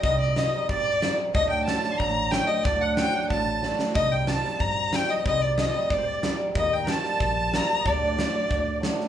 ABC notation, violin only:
X:1
M:2/4
L:1/16
Q:1/4=92
K:none
V:1 name="Violin"
_e d e2 d3 z | _e g a2 _b2 g e | d ^f g2 a3 z | _e g a2 _b2 g e |
_e d e2 d3 z | _e g a4 _b2 | d6 z2 |]